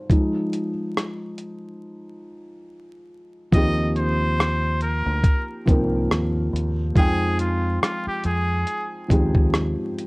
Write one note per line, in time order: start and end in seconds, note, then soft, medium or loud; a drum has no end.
0.00 0.12 C5 medium
0.10 0.69 F3 medium
0.10 0.70 G#3 soft
0.10 0.70 D#4 medium
0.10 kick loud
0.10 closed hi-hat medium
0.53 closed hi-hat medium
0.97 cross-stick medium
0.97 closed hi-hat medium
1.38 closed hi-hat soft
3.52 5.02 D#2 loud
3.52 4.69 F3 medium
3.52 4.69 A#3 medium
3.52 4.70 C4 medium
3.52 4.70 D#4 medium
3.52 3.92 D#5 loud
3.52 kick loud
3.52 closed hi-hat medium
3.56 4.71 G4 medium
3.96 4.78 C5 medium
3.96 closed hi-hat medium
4.40 cross-stick loud
4.40 closed hi-hat loud
4.81 5.46 A#4 medium
4.81 closed hi-hat medium
5.06 5.23 D2 loud
5.24 kick loud
5.24 closed hi-hat medium
5.66 6.06 C2 loud
5.66 6.52 F3 medium
5.66 6.52 A#3 medium
5.66 6.53 C4 medium
5.66 6.53 D#4 medium
5.66 kick loud
5.66 closed hi-hat medium
5.70 6.54 A#4 medium
6.10 6.49 D#2 medium
6.10 cross-stick loud
6.10 closed hi-hat medium
6.53 6.92 D#2 medium
6.53 closed hi-hat medium
6.95 7.77 F2 loud
6.95 8.11 F3 medium
6.95 8.12 G#3 medium
6.95 8.12 C4 medium
6.95 8.13 D#4 medium
6.95 7.35 G#4 loud
6.95 8.13 G5 medium
6.95 kick loud
6.95 closed hi-hat medium
7.39 7.78 F4 medium
7.39 closed hi-hat medium
7.82 8.04 F4 medium
7.82 cross-stick loud
7.82 closed hi-hat medium
8.07 8.23 G4 medium
8.07 muted fingered electric bass stroke soft
8.23 8.63 F2 medium
8.23 8.88 G#4 medium
8.23 closed hi-hat medium
8.67 closed hi-hat medium
9.08 9.74 D#2 medium
9.08 9.95 F3 medium
9.08 9.95 G#3 medium
9.08 9.96 C4 medium
9.08 9.96 D#4 medium
9.08 kick loud
9.08 closed hi-hat medium
9.13 9.97 G4 medium
9.35 kick loud
9.54 cross-stick loud
9.54 closed hi-hat medium
9.99 closed hi-hat medium